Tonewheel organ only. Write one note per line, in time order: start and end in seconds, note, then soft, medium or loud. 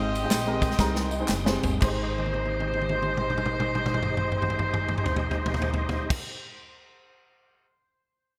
0.00 1.80 G#3 medium
0.00 1.80 G5 medium
0.00 1.80 C6 medium
0.00 1.78 D#6 medium
1.82 6.14 G#3 medium
1.82 6.14 D#4 medium
1.82 6.14 G4 medium
1.82 6.14 C5 medium
1.82 6.14 D#5 medium